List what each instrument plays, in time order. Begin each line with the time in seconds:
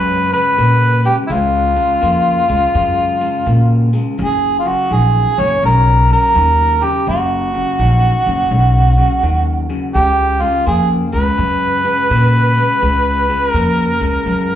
Already playing: upright bass F#2, clean electric guitar C#3 G#3, harmonica B4
0.33 clean electric guitar C#3 G#3, harmonica B4
0.58 upright bass A#2, clean electric guitar C#3 A#3
1.05 clean electric guitar C#3 G#3, harmonica G4
1.27 upright bass C#2, clean electric guitar C#3 G#3, harmonica E4
1.32 harmonica F4
1.76 clean electric guitar C#3 G#3
2.01 upright bass F2, clean electric guitar C#3 A#3
2.49 upright bass C#2, clean electric guitar C#3 G#3
2.75 upright bass F#2, clean electric guitar C#3 G#3
3.21 clean electric guitar C#3 G#3
3.46 upright bass A#2, clean electric guitar C#3 A#3
3.93 clean electric guitar C#3 G#3
4.18 upright bass F#1, clean electric guitar F#2 C#3, harmonica G#4
4.59 harmonica F4
4.65 clean electric guitar F#2 C#3, harmonica F#4
4.91 upright bass A#1, clean electric guitar F#2 D#3, harmonica G#4
5.38 upright bass F#1, clean electric guitar F#2 C#3, harmonica C#5
5.62 upright bass B1, clean electric guitar F#2 C#3, harmonica A#4
6.09 clean electric guitar F#2 C#3, harmonica A#4
6.34 upright bass D#2, clean electric guitar F#2 D#3
6.81 clean electric guitar F#2 C#3, harmonica G4
7.07 upright bass F#1, clean electric guitar F#2 C#3, harmonica F#4
7.54 clean electric guitar F#2 C#3
7.79 upright bass A#1, clean electric guitar F#2 D#3
8.26 upright bass F#1, clean electric guitar F#2 C#3
8.51 upright bass B1, clean electric guitar F#2 C#3
8.98 clean electric guitar F#2 C#3
9.23 upright bass D#2, clean electric guitar F#2 D#3
9.69 clean electric guitar F#2 C#3
9.94 upright bass C#2, clean electric guitar C#3 G#3, harmonica G4
10.41 clean electric guitar C#3 G#3, harmonica F4
10.66 upright bass F2, clean electric guitar C#3 A#3, harmonica G#4
11.13 upright bass C#2, clean electric guitar C#3 G#3, harmonica B4
11.37 upright bass F#2, clean electric guitar C#3 G#3
11.84 clean electric guitar C#3 G#3
12.10 upright bass A#2, clean electric guitar C#3 A#3
12.57 clean electric guitar C#3 G#3
12.82 upright bass C#2, clean electric guitar C#3 G#3
13.29 clean electric guitar C#3 G#3
13.49 harmonica A#4
13.54 upright bass F2, clean electric guitar C#3 A#3
14.00 upright bass C#2, clean electric guitar C#3 G#3
14.26 upright bass F#2, clean electric guitar C#3 G#3